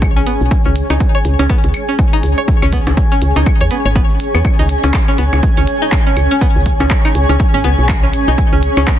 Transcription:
Already playing: fm bass B1, ambient pad C#4 G#4 C#5 G#5
0.02 kick, claves, shaker
0.16 synth pluck C#4, shaker
0.27 fm bass G#1, synth pluck B3, closed hi-hat, shaker
0.41 fm bass B1, shaker
0.51 kick, shaker
0.64 fm bass C#2, synth pluck C#4, shaker
0.76 closed hi-hat, shaker
0.90 fm bass C#2, synth pluck D#4, closed hi-hat, percussion blips, claves, shaker
1.00 kick, shaker
1.15 synth pluck C#5, shaker
1.24 fm bass C#2, closed hi-hat, shaker
1.39 fm bass C#2, synth pluck C#4, percussion blips, shaker
1.49 synth pluck B3, kick, shaker
1.63 fm bass C#2, closed hi-hat, shaker
1.73 closed hi-hat, claves, shaker
1.89 synth pluck C#4, shaker
1.99 kick, shaker
2.13 synth pluck D#4, shaker
2.23 fm bass C#2, closed hi-hat, shaker
2.37 synth pluck C#5, shaker
2.48 kick, shaker
2.62 fm bass C#2, synth pluck C#4, claves, shaker
2.72 synth pluck B3, kick, closed hi-hat, shaker
2.86 fm bass C#2, closed hi-hat, percussion blips, shaker
2.97 kick, shaker
3.12 synth pluck C#4, shaker
3.21 fm bass C#2, closed hi-hat, shaker
3.36 fm bass C#2, synth pluck D#4, percussion blips, shaker
3.46 kick, claves, shaker
3.61 fm bass E2, synth pluck C#5, closed hi-hat, shaker
3.70 synth pluck B3, closed hi-hat, shaker
3.85 fm bass G#1, synth pluck C#5, shaker
3.96 synth pluck B3, kick, shaker
4.10 shaker
4.20 closed hi-hat, shaker
4.35 fm bass E2, synth pluck B3, claves, shaker
4.44 kick, claves, shaker
4.59 fm bass C#2, synth pluck D#4, shaker
4.69 closed hi-hat, shaker
4.84 fm bass C#2, synth pluck C#4, closed hi-hat, percussion blips, shaker
4.94 kick, clap, shaker
5.08 synth pluck C#4, shaker
5.18 fm bass C#2, synth pluck B3, closed hi-hat, shaker
5.33 fm bass C#2, percussion blips, claves, shaker
5.43 kick, shaker
5.57 fm bass C#2, synth pluck C#4, closed hi-hat, shaker
5.67 closed hi-hat, shaker
5.82 synth pluck D#4, shaker
5.92 kick, clap, shaker
6.06 synth pluck C#4, shaker
6.17 fm bass C#2, closed hi-hat, claves, shaker
6.31 synth pluck C#4, shaker
6.41 synth pluck B3, kick, shaker
6.55 fm bass C#2, shaker
6.66 kick, closed hi-hat, shaker
6.80 fm bass C#2, synth pluck C#4, closed hi-hat, percussion blips, shaker
6.91 kick, clap, shaker
7.05 synth pluck D#4, claves, shaker
7.15 fm bass C#2, closed hi-hat, shaker
7.29 fm bass C#2, synth pluck C#4, percussion blips, shaker
7.39 kick, shaker
7.54 fm bass G#1, synth pluck C#4, closed hi-hat, shaker
7.64 fm bass C#2, synth pluck B3, closed hi-hat, shaker
7.79 fm bass B1, shaker
7.89 kick, clap, claves, shaker
8.03 synth pluck C#4, shaker
8.13 fm bass G#1, closed hi-hat, shaker
8.28 fm bass B1, synth pluck D#4, shaker
8.38 kick, shaker
8.52 fm bass C#2, synth pluck C#4, shaker
8.62 closed hi-hat, shaker
8.77 fm bass C#2, synth pluck C#4, closed hi-hat, percussion blips, claves, shaker
8.87 synth pluck B3, kick, clap, shaker

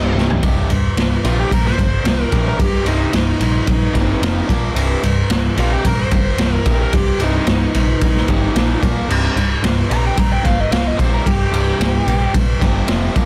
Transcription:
Already playing: picked electric bass C1, distorted electric guitar C2 G2 C3 G3 D#4, lead electric guitar D#5
0.15 picked electric bass C1, distorted electric guitar C2 G2 C3, snare
0.30 floor tom
0.42 picked electric bass C1, distorted electric guitar C2 G2 C3, kick, ride
0.70 picked electric bass C1, distorted electric guitar C2 G2, ride
0.97 picked electric bass C1, distorted electric guitar C2 G2, snare, ride
1.24 picked electric bass A#1, distorted electric guitar C2 G2 C3, lead electric guitar F4, ride
1.39 lead electric guitar G4
1.50 picked electric bass A#1, distorted electric guitar C2 G2, lead electric guitar A#4, kick, ride
1.66 lead electric guitar C5, snare
1.78 picked electric bass G1, distorted electric guitar C2 G2, kick, ride
2.04 picked electric bass C1, distorted electric guitar C2 G2, snare, ride
2.21 lead electric guitar A#4
2.31 picked electric bass A#1, distorted electric guitar C2 G2 C3, kick, ride
2.48 lead electric guitar A#4
2.59 picked electric bass C1, distorted electric guitar C2 G2, lead electric guitar G4, kick, ride
2.85 picked electric bass C1, distorted electric guitar C2 G2 C3, lead electric guitar D#4, ride
3.13 picked electric bass C1, distorted electric guitar C2 G2, snare, ride
3.40 picked electric bass A#1, distorted electric guitar C2 G2, ride
3.66 picked electric bass A#1, distorted electric guitar C2 G2, kick, ride
3.93 picked electric bass G1, distorted electric guitar C2 G2 C3, kick, snare, ride
4.21 picked electric bass F1, distorted electric guitar F2 C3 F3, snare, ride
4.47 picked electric bass A#1, distorted electric guitar A#2 F3 A#3, kick, ride
4.74 picked electric bass C1, distorted electric guitar C2 G2 C3, ride
5.03 picked electric bass C1, distorted electric guitar C2 G2, ride
5.30 picked electric bass C1, distorted electric guitar C2 G2, snare, ride
5.56 picked electric bass A#1, distorted electric guitar C2 G2 C3, lead electric guitar F4, ride
5.72 lead electric guitar G4
5.84 picked electric bass A#1, distorted electric guitar C2 G2, lead electric guitar A#4, kick, ride
5.99 lead electric guitar C5
6.11 picked electric bass G1, distorted electric guitar C2 G2, kick, ride
6.38 picked electric bass C1, distorted electric guitar C2 G2, snare, ride
6.54 lead electric guitar A#4
6.66 picked electric bass A#1, distorted electric guitar C2 G2 C3, kick, ride
6.82 lead electric guitar A#4
6.93 picked electric bass C1, distorted electric guitar C2 G2, lead electric guitar G4, kick, ride
7.19 picked electric bass C1, distorted electric guitar C2 G2 C3, ride
7.23 lead electric guitar D#4
7.47 picked electric bass C1, distorted electric guitar C2 G2, snare, ride
7.74 picked electric bass A#1, distorted electric guitar C2 G2, ride
8.01 picked electric bass A#1, distorted electric guitar C2 G2, kick, ride
8.16 snare
8.28 picked electric bass G1, distorted electric guitar C2 G2 C3, kick, ride
8.55 picked electric bass A#1, distorted electric guitar A#2 F3 A#3, snare, ride
8.82 picked electric bass A#1, distorted electric guitar A#2 F3 A#3, kick, ride
9.08 picked electric bass C1, distorted electric guitar C2 G2 C3, crash
9.36 picked electric bass C1, distorted electric guitar C2 G2, ride
9.63 picked electric bass C1, distorted electric guitar C2 G2, snare, ride
9.89 picked electric bass A#1, distorted electric guitar C2 G2 C3, lead electric guitar A#5, ride
10.06 lead electric guitar G5
10.16 picked electric bass A#1, distorted electric guitar C2 G2, lead electric guitar A#5, kick, ride
10.33 lead electric guitar G5
10.43 picked electric bass G1, distorted electric guitar C2 G2, lead electric guitar F5, kick, snare, ride
10.60 lead electric guitar D#5
10.71 picked electric bass C1, distorted electric guitar C2 G2, lead electric guitar F5, snare, ride
10.87 lead electric guitar D#5
10.97 picked electric bass A#1, distorted electric guitar C2 G2 C3, lead electric guitar C5, kick, ride
11.14 lead electric guitar A#4
11.24 picked electric bass C1, distorted electric guitar C2 G2, lead electric guitar G4, kick, ride
11.52 picked electric bass C1, distorted electric guitar C2 G2 C3, ride
11.80 picked electric bass C1, distorted electric guitar C2 G2, snare, ride
12.06 picked electric bass A#1, distorted electric guitar C2 G2, ride
12.34 picked electric bass A#1, distorted electric guitar C2 G2, kick, ride
12.60 picked electric bass G1, distorted electric guitar C2 G2 C3, kick, snare, ride
12.88 picked electric bass F1, distorted electric guitar F2 C3 F3, snare, ride
13.15 picked electric bass A#1, distorted electric guitar A#2 F3 A#3, kick, ride

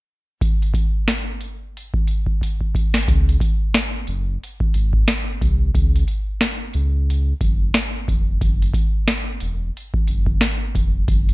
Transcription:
0.41 kick, closed hi-hat
0.62 closed hi-hat
0.74 kick, closed hi-hat
1.08 snare, closed hi-hat
1.41 closed hi-hat
1.77 closed hi-hat
1.94 kick
2.07 closed hi-hat
2.26 kick
2.41 kick, closed hi-hat
2.61 kick
2.75 kick, closed hi-hat
2.94 snare
3.08 sub bass C#2, kick, closed hi-hat
3.29 closed hi-hat
3.40 kick, closed hi-hat
3.74 snare, closed hi-hat
4.07 sub bass F#1, closed hi-hat
4.43 closed hi-hat
4.60 kick
4.74 sub bass G#1, closed hi-hat
4.93 kick
5.08 snare, closed hi-hat
5.41 sub bass C2, kick, closed hi-hat
5.75 sub bass C#2, kick, closed hi-hat
5.96 closed hi-hat
6.08 closed hi-hat
6.41 snare, closed hi-hat
6.73 sub bass C#2, closed hi-hat
7.10 closed hi-hat
7.41 sub bass F#1, kick, closed hi-hat
7.74 snare, closed hi-hat
8.08 sub bass F1, kick, closed hi-hat
8.41 sub bass F#1, kick, closed hi-hat
8.62 closed hi-hat
8.74 kick, closed hi-hat
9.08 snare, closed hi-hat
9.40 sub bass E1, closed hi-hat
9.77 closed hi-hat
9.94 kick
10.08 sub bass F#1, closed hi-hat
10.26 kick
10.41 snare, closed hi-hat
10.75 sub bass F1, kick, closed hi-hat
11.08 sub bass F#1, kick, closed hi-hat
11.29 closed hi-hat

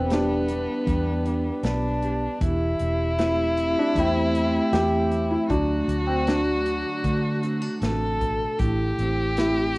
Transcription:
Already playing: fingered electric bass E1, steel-string acoustic guitar E3 D4, felt piano G3 C4, violin B3
0.10 vibraphone B3 D4 G4, felt piano D4, steel-string acoustic guitar G4, snare, closed hi-hat
0.14 felt piano G3
0.48 vibraphone D4, steel-string acoustic guitar D4, closed hi-hat
0.87 fingered electric bass E2, steel-string acoustic guitar G3, vibraphone B3, kick, closed hi-hat
1.25 vibraphone D4, steel-string acoustic guitar D4, closed hi-hat
1.63 fingered electric bass B1, vibraphone B3, violin D4, steel-string acoustic guitar B4, snare, closed hi-hat
2.02 steel-string acoustic guitar G4, closed hi-hat
2.41 fingered electric bass E1, steel-string acoustic guitar E3, violin E4, vibraphone E4 G4, kick, closed hi-hat
2.79 fingered electric bass E1, steel-string acoustic guitar C4, closed hi-hat
3.18 vibraphone A3 C4 G4, steel-string acoustic guitar C4, felt piano E4, snare, closed hi-hat
3.57 vibraphone C4, steel-string acoustic guitar C4, closed hi-hat
3.79 felt piano D4
3.95 fingered electric bass E2, steel-string acoustic guitar A3, vibraphone A3, felt piano E4, kick, closed hi-hat
4.00 felt piano C4
4.34 vibraphone C4, steel-string acoustic guitar C4, closed hi-hat
4.72 fingered electric bass E2, vibraphone A3, felt piano G4, snare, closed hi-hat
5.11 steel-string acoustic guitar E3, closed hi-hat
5.31 felt piano E4
5.48 fingered electric bass D2, steel-string acoustic guitar D3, felt piano F#3 D4, vibraphone A3 F#4, violin F#4, kick, closed hi-hat
5.88 fingered electric bass D2, steel-string acoustic guitar D4, closed hi-hat
6.07 felt piano C4
6.27 felt piano F#3 D4, vibraphone A3 D4 F#4, snare, closed hi-hat
6.65 vibraphone D4, steel-string acoustic guitar D4, closed hi-hat
7.03 fingered electric bass D3, vibraphone A3, steel-string acoustic guitar A3, kick, closed hi-hat
7.42 steel-string acoustic guitar C4, vibraphone D4, closed hi-hat
7.62 steel-string acoustic guitar D4
7.80 fingered electric bass A1, steel-string acoustic guitar C3, vibraphone A3, violin A4, snare, closed hi-hat
8.20 steel-string acoustic guitar B2, kick, closed hi-hat
8.58 fingered electric bass A1, steel-string acoustic guitar A2, vibraphone E4 G4, violin G4, kick, closed hi-hat
8.99 fingered electric bass A1, steel-string acoustic guitar C4, closed hi-hat
9.37 vibraphone A3 C4 G4, steel-string acoustic guitar C4, felt piano E4, snare, closed hi-hat

